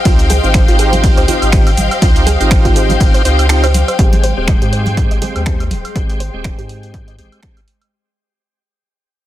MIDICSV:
0, 0, Header, 1, 7, 480
1, 0, Start_track
1, 0, Key_signature, -4, "major"
1, 0, Tempo, 491803
1, 52, Time_signature, 4, 2, 24, 8
1, 9040, End_track
2, 0, Start_track
2, 0, Title_t, "String machine"
2, 0, Program_c, 0, 50
2, 0, Note_on_c, 0, 67, 83
2, 0, Note_on_c, 0, 75, 76
2, 0, Note_on_c, 0, 77, 75
2, 0, Note_on_c, 0, 84, 90
2, 3853, Note_off_c, 0, 67, 0
2, 3853, Note_off_c, 0, 75, 0
2, 3853, Note_off_c, 0, 77, 0
2, 3853, Note_off_c, 0, 84, 0
2, 3891, Note_on_c, 0, 56, 83
2, 3891, Note_on_c, 0, 79, 72
2, 3892, Note_on_c, 0, 84, 91
2, 7693, Note_off_c, 0, 56, 0
2, 7693, Note_off_c, 0, 79, 0
2, 7694, Note_off_c, 0, 84, 0
2, 9040, End_track
3, 0, Start_track
3, 0, Title_t, "String section"
3, 0, Program_c, 1, 48
3, 0, Note_on_c, 1, 72, 73
3, 0, Note_on_c, 1, 77, 81
3, 0, Note_on_c, 1, 79, 94
3, 7732, Note_off_c, 1, 72, 0
3, 7732, Note_off_c, 1, 77, 0
3, 7732, Note_off_c, 1, 79, 0
3, 9040, End_track
4, 0, Start_track
4, 0, Title_t, "Synth arpeggio sound"
4, 0, Program_c, 2, 84
4, 50, Note_on_c, 2, 65, 89
4, 141, Note_off_c, 2, 65, 0
4, 291, Note_on_c, 2, 68, 103
4, 381, Note_off_c, 2, 68, 0
4, 530, Note_on_c, 2, 72, 85
4, 621, Note_off_c, 2, 72, 0
4, 666, Note_on_c, 2, 65, 108
4, 766, Note_off_c, 2, 65, 0
4, 771, Note_on_c, 2, 68, 78
4, 900, Note_off_c, 2, 68, 0
4, 1146, Note_on_c, 2, 72, 102
4, 1188, Note_off_c, 2, 72, 0
4, 1251, Note_on_c, 2, 65, 78
4, 1305, Note_off_c, 2, 65, 0
4, 1971, Note_on_c, 2, 65, 87
4, 2061, Note_off_c, 2, 65, 0
4, 2211, Note_on_c, 2, 68, 102
4, 2301, Note_off_c, 2, 68, 0
4, 2451, Note_on_c, 2, 72, 86
4, 2541, Note_off_c, 2, 72, 0
4, 2586, Note_on_c, 2, 65, 102
4, 2686, Note_off_c, 2, 65, 0
4, 2691, Note_on_c, 2, 68, 82
4, 2820, Note_off_c, 2, 68, 0
4, 3067, Note_on_c, 2, 72, 96
4, 3109, Note_off_c, 2, 72, 0
4, 3172, Note_on_c, 2, 72, 79
4, 3226, Note_off_c, 2, 72, 0
4, 3547, Note_on_c, 2, 72, 80
4, 3647, Note_off_c, 2, 72, 0
4, 3788, Note_on_c, 2, 72, 77
4, 3857, Note_off_c, 2, 72, 0
4, 3893, Note_on_c, 2, 67, 87
4, 3982, Note_off_c, 2, 67, 0
4, 4133, Note_on_c, 2, 72, 101
4, 4222, Note_off_c, 2, 72, 0
4, 4372, Note_on_c, 2, 75, 83
4, 4462, Note_off_c, 2, 75, 0
4, 4508, Note_on_c, 2, 67, 102
4, 4607, Note_off_c, 2, 67, 0
4, 4612, Note_on_c, 2, 72, 76
4, 4740, Note_off_c, 2, 72, 0
4, 4988, Note_on_c, 2, 75, 100
4, 5029, Note_off_c, 2, 75, 0
4, 5092, Note_on_c, 2, 67, 77
4, 5146, Note_off_c, 2, 67, 0
4, 5812, Note_on_c, 2, 67, 87
4, 5902, Note_off_c, 2, 67, 0
4, 6051, Note_on_c, 2, 72, 101
4, 6141, Note_off_c, 2, 72, 0
4, 6291, Note_on_c, 2, 75, 82
4, 6381, Note_off_c, 2, 75, 0
4, 6426, Note_on_c, 2, 67, 105
4, 6526, Note_off_c, 2, 67, 0
4, 6531, Note_on_c, 2, 72, 77
4, 6660, Note_off_c, 2, 72, 0
4, 6907, Note_on_c, 2, 75, 98
4, 6949, Note_off_c, 2, 75, 0
4, 7012, Note_on_c, 2, 67, 78
4, 7066, Note_off_c, 2, 67, 0
4, 9040, End_track
5, 0, Start_track
5, 0, Title_t, "Tonewheel organ"
5, 0, Program_c, 3, 16
5, 50, Note_on_c, 3, 60, 86
5, 51, Note_on_c, 3, 63, 74
5, 53, Note_on_c, 3, 65, 77
5, 55, Note_on_c, 3, 67, 95
5, 311, Note_off_c, 3, 60, 0
5, 311, Note_off_c, 3, 63, 0
5, 312, Note_off_c, 3, 65, 0
5, 313, Note_off_c, 3, 67, 0
5, 423, Note_on_c, 3, 60, 90
5, 425, Note_on_c, 3, 63, 85
5, 429, Note_on_c, 3, 65, 81
5, 431, Note_on_c, 3, 67, 96
5, 1225, Note_off_c, 3, 60, 0
5, 1226, Note_off_c, 3, 63, 0
5, 1228, Note_off_c, 3, 65, 0
5, 1229, Note_off_c, 3, 67, 0
5, 1250, Note_on_c, 3, 60, 80
5, 1251, Note_on_c, 3, 63, 74
5, 1253, Note_on_c, 3, 65, 77
5, 1254, Note_on_c, 3, 67, 92
5, 1466, Note_off_c, 3, 60, 0
5, 1466, Note_off_c, 3, 63, 0
5, 1467, Note_off_c, 3, 65, 0
5, 1468, Note_off_c, 3, 67, 0
5, 1490, Note_on_c, 3, 60, 102
5, 1492, Note_on_c, 3, 63, 91
5, 1493, Note_on_c, 3, 65, 95
5, 1495, Note_on_c, 3, 67, 110
5, 1662, Note_off_c, 3, 60, 0
5, 1663, Note_off_c, 3, 63, 0
5, 1664, Note_off_c, 3, 65, 0
5, 1664, Note_off_c, 3, 67, 0
5, 1970, Note_on_c, 3, 60, 82
5, 1972, Note_on_c, 3, 63, 78
5, 1973, Note_on_c, 3, 65, 77
5, 1974, Note_on_c, 3, 67, 91
5, 2231, Note_off_c, 3, 60, 0
5, 2232, Note_off_c, 3, 63, 0
5, 2232, Note_off_c, 3, 65, 0
5, 2233, Note_off_c, 3, 67, 0
5, 2342, Note_on_c, 3, 60, 89
5, 2345, Note_on_c, 3, 63, 81
5, 2348, Note_on_c, 3, 65, 81
5, 2351, Note_on_c, 3, 67, 100
5, 3145, Note_off_c, 3, 60, 0
5, 3146, Note_off_c, 3, 63, 0
5, 3148, Note_off_c, 3, 65, 0
5, 3149, Note_off_c, 3, 67, 0
5, 3171, Note_on_c, 3, 60, 84
5, 3172, Note_on_c, 3, 63, 74
5, 3174, Note_on_c, 3, 65, 78
5, 3175, Note_on_c, 3, 67, 92
5, 3386, Note_off_c, 3, 60, 0
5, 3387, Note_off_c, 3, 63, 0
5, 3388, Note_off_c, 3, 65, 0
5, 3388, Note_off_c, 3, 67, 0
5, 3410, Note_on_c, 3, 60, 99
5, 3412, Note_on_c, 3, 63, 90
5, 3414, Note_on_c, 3, 65, 88
5, 3415, Note_on_c, 3, 67, 110
5, 3582, Note_off_c, 3, 60, 0
5, 3583, Note_off_c, 3, 63, 0
5, 3584, Note_off_c, 3, 65, 0
5, 3585, Note_off_c, 3, 67, 0
5, 3891, Note_on_c, 3, 56, 80
5, 3893, Note_on_c, 3, 60, 74
5, 3895, Note_on_c, 3, 67, 89
5, 4151, Note_off_c, 3, 56, 0
5, 4152, Note_off_c, 3, 60, 0
5, 4153, Note_off_c, 3, 67, 0
5, 4264, Note_on_c, 3, 56, 86
5, 4268, Note_on_c, 3, 60, 78
5, 4273, Note_on_c, 3, 67, 98
5, 5065, Note_off_c, 3, 56, 0
5, 5067, Note_off_c, 3, 60, 0
5, 5070, Note_off_c, 3, 67, 0
5, 5090, Note_on_c, 3, 56, 79
5, 5093, Note_on_c, 3, 60, 72
5, 5095, Note_on_c, 3, 67, 88
5, 5306, Note_off_c, 3, 56, 0
5, 5307, Note_off_c, 3, 60, 0
5, 5309, Note_off_c, 3, 67, 0
5, 5330, Note_on_c, 3, 56, 94
5, 5333, Note_on_c, 3, 60, 85
5, 5335, Note_on_c, 3, 67, 108
5, 5502, Note_off_c, 3, 56, 0
5, 5503, Note_off_c, 3, 60, 0
5, 5504, Note_off_c, 3, 67, 0
5, 5810, Note_on_c, 3, 56, 77
5, 5813, Note_on_c, 3, 60, 73
5, 5815, Note_on_c, 3, 67, 88
5, 6071, Note_off_c, 3, 56, 0
5, 6072, Note_off_c, 3, 60, 0
5, 6073, Note_off_c, 3, 67, 0
5, 6184, Note_on_c, 3, 56, 83
5, 6188, Note_on_c, 3, 60, 79
5, 6192, Note_on_c, 3, 67, 96
5, 6985, Note_off_c, 3, 56, 0
5, 6987, Note_off_c, 3, 60, 0
5, 6989, Note_off_c, 3, 67, 0
5, 7011, Note_on_c, 3, 56, 76
5, 7013, Note_on_c, 3, 60, 68
5, 7015, Note_on_c, 3, 67, 89
5, 7226, Note_off_c, 3, 56, 0
5, 7228, Note_off_c, 3, 60, 0
5, 7229, Note_off_c, 3, 67, 0
5, 7251, Note_on_c, 3, 56, 89
5, 7253, Note_on_c, 3, 60, 88
5, 7255, Note_on_c, 3, 67, 102
5, 7422, Note_off_c, 3, 56, 0
5, 7423, Note_off_c, 3, 60, 0
5, 7424, Note_off_c, 3, 67, 0
5, 9040, End_track
6, 0, Start_track
6, 0, Title_t, "Analog synth bass"
6, 0, Program_c, 4, 38
6, 53, Note_on_c, 4, 37, 101
6, 381, Note_off_c, 4, 37, 0
6, 427, Note_on_c, 4, 32, 99
6, 609, Note_off_c, 4, 32, 0
6, 667, Note_on_c, 4, 32, 95
6, 1101, Note_off_c, 4, 32, 0
6, 1147, Note_on_c, 4, 37, 76
6, 1230, Note_off_c, 4, 37, 0
6, 1388, Note_on_c, 4, 32, 96
6, 1696, Note_off_c, 4, 32, 0
6, 1733, Note_on_c, 4, 32, 84
6, 1838, Note_off_c, 4, 32, 0
6, 1973, Note_on_c, 4, 37, 98
6, 2301, Note_off_c, 4, 37, 0
6, 2349, Note_on_c, 4, 32, 96
6, 2530, Note_off_c, 4, 32, 0
6, 2587, Note_on_c, 4, 32, 99
6, 2896, Note_off_c, 4, 32, 0
6, 2933, Note_on_c, 4, 32, 102
6, 3038, Note_off_c, 4, 32, 0
6, 3173, Note_on_c, 4, 37, 86
6, 3741, Note_off_c, 4, 37, 0
6, 3894, Note_on_c, 4, 32, 92
6, 4221, Note_off_c, 4, 32, 0
6, 4270, Note_on_c, 4, 27, 99
6, 4450, Note_off_c, 4, 27, 0
6, 4509, Note_on_c, 4, 44, 92
6, 4941, Note_off_c, 4, 44, 0
6, 4989, Note_on_c, 4, 32, 77
6, 5071, Note_off_c, 4, 32, 0
6, 5230, Note_on_c, 4, 39, 98
6, 5574, Note_on_c, 4, 27, 83
6, 5589, Note_off_c, 4, 39, 0
6, 5679, Note_off_c, 4, 27, 0
6, 5813, Note_on_c, 4, 32, 94
6, 6141, Note_off_c, 4, 32, 0
6, 6190, Note_on_c, 4, 27, 100
6, 6370, Note_off_c, 4, 27, 0
6, 6429, Note_on_c, 4, 44, 96
6, 7014, Note_on_c, 4, 32, 100
6, 7028, Note_off_c, 4, 44, 0
6, 7119, Note_off_c, 4, 32, 0
6, 9040, End_track
7, 0, Start_track
7, 0, Title_t, "Drums"
7, 52, Note_on_c, 9, 36, 122
7, 52, Note_on_c, 9, 42, 91
7, 52, Note_on_c, 9, 51, 76
7, 53, Note_on_c, 9, 82, 50
7, 149, Note_off_c, 9, 42, 0
7, 149, Note_off_c, 9, 51, 0
7, 150, Note_off_c, 9, 36, 0
7, 150, Note_off_c, 9, 82, 0
7, 187, Note_on_c, 9, 42, 54
7, 188, Note_on_c, 9, 82, 23
7, 285, Note_off_c, 9, 42, 0
7, 286, Note_off_c, 9, 82, 0
7, 292, Note_on_c, 9, 46, 102
7, 293, Note_on_c, 9, 82, 86
7, 294, Note_on_c, 9, 63, 60
7, 389, Note_off_c, 9, 46, 0
7, 390, Note_off_c, 9, 82, 0
7, 392, Note_off_c, 9, 63, 0
7, 428, Note_on_c, 9, 82, 37
7, 525, Note_off_c, 9, 82, 0
7, 528, Note_on_c, 9, 26, 121
7, 532, Note_on_c, 9, 36, 117
7, 533, Note_on_c, 9, 42, 85
7, 533, Note_on_c, 9, 51, 70
7, 533, Note_on_c, 9, 82, 46
7, 625, Note_off_c, 9, 26, 0
7, 630, Note_off_c, 9, 36, 0
7, 630, Note_off_c, 9, 42, 0
7, 630, Note_off_c, 9, 51, 0
7, 631, Note_off_c, 9, 82, 0
7, 668, Note_on_c, 9, 42, 56
7, 669, Note_on_c, 9, 82, 25
7, 766, Note_off_c, 9, 42, 0
7, 766, Note_off_c, 9, 82, 0
7, 772, Note_on_c, 9, 46, 105
7, 772, Note_on_c, 9, 82, 84
7, 869, Note_off_c, 9, 46, 0
7, 870, Note_off_c, 9, 82, 0
7, 906, Note_on_c, 9, 63, 70
7, 907, Note_on_c, 9, 46, 58
7, 907, Note_on_c, 9, 64, 83
7, 908, Note_on_c, 9, 82, 37
7, 1003, Note_off_c, 9, 63, 0
7, 1005, Note_off_c, 9, 46, 0
7, 1005, Note_off_c, 9, 64, 0
7, 1005, Note_off_c, 9, 82, 0
7, 1012, Note_on_c, 9, 36, 117
7, 1012, Note_on_c, 9, 42, 79
7, 1012, Note_on_c, 9, 51, 69
7, 1012, Note_on_c, 9, 82, 48
7, 1109, Note_off_c, 9, 42, 0
7, 1109, Note_off_c, 9, 51, 0
7, 1110, Note_off_c, 9, 36, 0
7, 1110, Note_off_c, 9, 82, 0
7, 1147, Note_on_c, 9, 42, 53
7, 1148, Note_on_c, 9, 82, 24
7, 1245, Note_off_c, 9, 42, 0
7, 1245, Note_off_c, 9, 82, 0
7, 1250, Note_on_c, 9, 64, 73
7, 1252, Note_on_c, 9, 46, 104
7, 1253, Note_on_c, 9, 82, 84
7, 1348, Note_off_c, 9, 64, 0
7, 1349, Note_off_c, 9, 46, 0
7, 1350, Note_off_c, 9, 82, 0
7, 1388, Note_on_c, 9, 42, 37
7, 1388, Note_on_c, 9, 76, 62
7, 1389, Note_on_c, 9, 82, 36
7, 1485, Note_off_c, 9, 42, 0
7, 1485, Note_off_c, 9, 76, 0
7, 1486, Note_off_c, 9, 82, 0
7, 1488, Note_on_c, 9, 26, 110
7, 1492, Note_on_c, 9, 36, 115
7, 1493, Note_on_c, 9, 42, 80
7, 1493, Note_on_c, 9, 51, 68
7, 1493, Note_on_c, 9, 82, 48
7, 1585, Note_off_c, 9, 26, 0
7, 1590, Note_off_c, 9, 36, 0
7, 1590, Note_off_c, 9, 42, 0
7, 1590, Note_off_c, 9, 51, 0
7, 1591, Note_off_c, 9, 82, 0
7, 1628, Note_on_c, 9, 42, 54
7, 1628, Note_on_c, 9, 76, 76
7, 1629, Note_on_c, 9, 82, 24
7, 1725, Note_off_c, 9, 42, 0
7, 1725, Note_off_c, 9, 76, 0
7, 1726, Note_off_c, 9, 82, 0
7, 1732, Note_on_c, 9, 46, 99
7, 1733, Note_on_c, 9, 82, 83
7, 1736, Note_on_c, 9, 63, 66
7, 1830, Note_off_c, 9, 46, 0
7, 1831, Note_off_c, 9, 82, 0
7, 1834, Note_off_c, 9, 63, 0
7, 1868, Note_on_c, 9, 42, 38
7, 1868, Note_on_c, 9, 76, 66
7, 1869, Note_on_c, 9, 82, 35
7, 1965, Note_off_c, 9, 42, 0
7, 1965, Note_off_c, 9, 76, 0
7, 1966, Note_off_c, 9, 82, 0
7, 1972, Note_on_c, 9, 36, 119
7, 1973, Note_on_c, 9, 42, 89
7, 1973, Note_on_c, 9, 51, 73
7, 1973, Note_on_c, 9, 82, 51
7, 2070, Note_off_c, 9, 36, 0
7, 2070, Note_off_c, 9, 42, 0
7, 2070, Note_off_c, 9, 51, 0
7, 2071, Note_off_c, 9, 82, 0
7, 2108, Note_on_c, 9, 42, 52
7, 2109, Note_on_c, 9, 82, 22
7, 2206, Note_off_c, 9, 42, 0
7, 2206, Note_off_c, 9, 82, 0
7, 2207, Note_on_c, 9, 63, 58
7, 2213, Note_on_c, 9, 46, 106
7, 2214, Note_on_c, 9, 82, 81
7, 2304, Note_off_c, 9, 63, 0
7, 2311, Note_off_c, 9, 46, 0
7, 2311, Note_off_c, 9, 82, 0
7, 2349, Note_on_c, 9, 42, 40
7, 2349, Note_on_c, 9, 82, 37
7, 2446, Note_off_c, 9, 42, 0
7, 2447, Note_off_c, 9, 82, 0
7, 2448, Note_on_c, 9, 26, 123
7, 2452, Note_on_c, 9, 36, 121
7, 2453, Note_on_c, 9, 42, 81
7, 2453, Note_on_c, 9, 51, 66
7, 2454, Note_on_c, 9, 82, 47
7, 2546, Note_off_c, 9, 26, 0
7, 2550, Note_off_c, 9, 36, 0
7, 2551, Note_off_c, 9, 42, 0
7, 2551, Note_off_c, 9, 51, 0
7, 2552, Note_off_c, 9, 82, 0
7, 2587, Note_on_c, 9, 36, 58
7, 2589, Note_on_c, 9, 42, 57
7, 2590, Note_on_c, 9, 82, 24
7, 2685, Note_off_c, 9, 36, 0
7, 2687, Note_off_c, 9, 42, 0
7, 2687, Note_off_c, 9, 82, 0
7, 2694, Note_on_c, 9, 46, 104
7, 2694, Note_on_c, 9, 82, 84
7, 2791, Note_off_c, 9, 46, 0
7, 2792, Note_off_c, 9, 82, 0
7, 2825, Note_on_c, 9, 64, 86
7, 2829, Note_on_c, 9, 63, 62
7, 2830, Note_on_c, 9, 42, 39
7, 2830, Note_on_c, 9, 82, 35
7, 2923, Note_off_c, 9, 64, 0
7, 2927, Note_off_c, 9, 42, 0
7, 2927, Note_off_c, 9, 63, 0
7, 2928, Note_off_c, 9, 82, 0
7, 2932, Note_on_c, 9, 36, 113
7, 2934, Note_on_c, 9, 42, 87
7, 2934, Note_on_c, 9, 51, 67
7, 2935, Note_on_c, 9, 82, 49
7, 3030, Note_off_c, 9, 36, 0
7, 3032, Note_off_c, 9, 42, 0
7, 3032, Note_off_c, 9, 51, 0
7, 3033, Note_off_c, 9, 82, 0
7, 3069, Note_on_c, 9, 42, 55
7, 3070, Note_on_c, 9, 82, 23
7, 3167, Note_off_c, 9, 42, 0
7, 3168, Note_off_c, 9, 82, 0
7, 3174, Note_on_c, 9, 46, 104
7, 3175, Note_on_c, 9, 82, 84
7, 3272, Note_off_c, 9, 46, 0
7, 3273, Note_off_c, 9, 82, 0
7, 3309, Note_on_c, 9, 46, 60
7, 3309, Note_on_c, 9, 76, 65
7, 3310, Note_on_c, 9, 82, 34
7, 3407, Note_off_c, 9, 46, 0
7, 3407, Note_off_c, 9, 76, 0
7, 3408, Note_off_c, 9, 82, 0
7, 3409, Note_on_c, 9, 26, 120
7, 3414, Note_on_c, 9, 42, 82
7, 3414, Note_on_c, 9, 51, 66
7, 3415, Note_on_c, 9, 82, 47
7, 3506, Note_off_c, 9, 26, 0
7, 3511, Note_off_c, 9, 42, 0
7, 3511, Note_off_c, 9, 51, 0
7, 3512, Note_off_c, 9, 82, 0
7, 3549, Note_on_c, 9, 42, 58
7, 3549, Note_on_c, 9, 76, 75
7, 3550, Note_on_c, 9, 82, 24
7, 3647, Note_off_c, 9, 42, 0
7, 3647, Note_off_c, 9, 76, 0
7, 3648, Note_off_c, 9, 82, 0
7, 3654, Note_on_c, 9, 46, 102
7, 3654, Note_on_c, 9, 63, 62
7, 3655, Note_on_c, 9, 82, 82
7, 3751, Note_off_c, 9, 46, 0
7, 3751, Note_off_c, 9, 63, 0
7, 3752, Note_off_c, 9, 82, 0
7, 3790, Note_on_c, 9, 42, 40
7, 3790, Note_on_c, 9, 76, 63
7, 3790, Note_on_c, 9, 82, 35
7, 3887, Note_off_c, 9, 42, 0
7, 3887, Note_off_c, 9, 76, 0
7, 3888, Note_off_c, 9, 82, 0
7, 3893, Note_on_c, 9, 36, 122
7, 3895, Note_on_c, 9, 42, 86
7, 3991, Note_off_c, 9, 36, 0
7, 3992, Note_off_c, 9, 42, 0
7, 4028, Note_on_c, 9, 63, 99
7, 4030, Note_on_c, 9, 42, 52
7, 4125, Note_off_c, 9, 63, 0
7, 4127, Note_off_c, 9, 42, 0
7, 4134, Note_on_c, 9, 46, 104
7, 4231, Note_off_c, 9, 46, 0
7, 4369, Note_on_c, 9, 26, 125
7, 4373, Note_on_c, 9, 36, 122
7, 4373, Note_on_c, 9, 42, 79
7, 4373, Note_on_c, 9, 63, 66
7, 4466, Note_off_c, 9, 26, 0
7, 4471, Note_off_c, 9, 36, 0
7, 4471, Note_off_c, 9, 42, 0
7, 4471, Note_off_c, 9, 63, 0
7, 4509, Note_on_c, 9, 42, 56
7, 4606, Note_off_c, 9, 42, 0
7, 4614, Note_on_c, 9, 46, 93
7, 4711, Note_off_c, 9, 46, 0
7, 4742, Note_on_c, 9, 63, 96
7, 4745, Note_on_c, 9, 64, 75
7, 4749, Note_on_c, 9, 42, 36
7, 4839, Note_off_c, 9, 63, 0
7, 4843, Note_off_c, 9, 64, 0
7, 4847, Note_off_c, 9, 42, 0
7, 4854, Note_on_c, 9, 36, 119
7, 4854, Note_on_c, 9, 42, 82
7, 4951, Note_off_c, 9, 36, 0
7, 4952, Note_off_c, 9, 42, 0
7, 4990, Note_on_c, 9, 42, 52
7, 5087, Note_off_c, 9, 42, 0
7, 5091, Note_on_c, 9, 63, 66
7, 5094, Note_on_c, 9, 46, 107
7, 5097, Note_on_c, 9, 64, 83
7, 5189, Note_off_c, 9, 63, 0
7, 5191, Note_off_c, 9, 46, 0
7, 5195, Note_off_c, 9, 64, 0
7, 5229, Note_on_c, 9, 42, 36
7, 5229, Note_on_c, 9, 76, 61
7, 5327, Note_off_c, 9, 42, 0
7, 5327, Note_off_c, 9, 76, 0
7, 5329, Note_on_c, 9, 26, 119
7, 5333, Note_on_c, 9, 36, 117
7, 5334, Note_on_c, 9, 42, 78
7, 5426, Note_off_c, 9, 26, 0
7, 5431, Note_off_c, 9, 36, 0
7, 5431, Note_off_c, 9, 42, 0
7, 5469, Note_on_c, 9, 42, 55
7, 5469, Note_on_c, 9, 76, 71
7, 5567, Note_off_c, 9, 42, 0
7, 5567, Note_off_c, 9, 76, 0
7, 5571, Note_on_c, 9, 63, 93
7, 5574, Note_on_c, 9, 46, 89
7, 5669, Note_off_c, 9, 63, 0
7, 5671, Note_off_c, 9, 46, 0
7, 5709, Note_on_c, 9, 42, 37
7, 5709, Note_on_c, 9, 76, 61
7, 5806, Note_off_c, 9, 42, 0
7, 5806, Note_off_c, 9, 76, 0
7, 5813, Note_on_c, 9, 36, 124
7, 5814, Note_on_c, 9, 42, 79
7, 5911, Note_off_c, 9, 36, 0
7, 5912, Note_off_c, 9, 42, 0
7, 5949, Note_on_c, 9, 42, 50
7, 6047, Note_off_c, 9, 42, 0
7, 6054, Note_on_c, 9, 46, 105
7, 6152, Note_off_c, 9, 46, 0
7, 6289, Note_on_c, 9, 26, 119
7, 6293, Note_on_c, 9, 36, 118
7, 6294, Note_on_c, 9, 42, 80
7, 6387, Note_off_c, 9, 26, 0
7, 6390, Note_off_c, 9, 36, 0
7, 6392, Note_off_c, 9, 42, 0
7, 6429, Note_on_c, 9, 42, 52
7, 6526, Note_off_c, 9, 42, 0
7, 6533, Note_on_c, 9, 46, 94
7, 6631, Note_off_c, 9, 46, 0
7, 6668, Note_on_c, 9, 42, 36
7, 6766, Note_off_c, 9, 42, 0
7, 6773, Note_on_c, 9, 36, 117
7, 6773, Note_on_c, 9, 42, 76
7, 6870, Note_off_c, 9, 36, 0
7, 6871, Note_off_c, 9, 42, 0
7, 6909, Note_on_c, 9, 42, 51
7, 7007, Note_off_c, 9, 42, 0
7, 7014, Note_on_c, 9, 46, 105
7, 7111, Note_off_c, 9, 46, 0
7, 7148, Note_on_c, 9, 42, 36
7, 7148, Note_on_c, 9, 76, 62
7, 7246, Note_off_c, 9, 42, 0
7, 7246, Note_off_c, 9, 76, 0
7, 7248, Note_on_c, 9, 26, 120
7, 7253, Note_on_c, 9, 36, 117
7, 7253, Note_on_c, 9, 42, 74
7, 7345, Note_off_c, 9, 26, 0
7, 7350, Note_off_c, 9, 42, 0
7, 7351, Note_off_c, 9, 36, 0
7, 7388, Note_on_c, 9, 42, 51
7, 7388, Note_on_c, 9, 76, 74
7, 7486, Note_off_c, 9, 42, 0
7, 7486, Note_off_c, 9, 76, 0
7, 7493, Note_on_c, 9, 46, 93
7, 7590, Note_off_c, 9, 46, 0
7, 7628, Note_on_c, 9, 42, 36
7, 7628, Note_on_c, 9, 76, 61
7, 7725, Note_off_c, 9, 42, 0
7, 7725, Note_off_c, 9, 76, 0
7, 9040, End_track
0, 0, End_of_file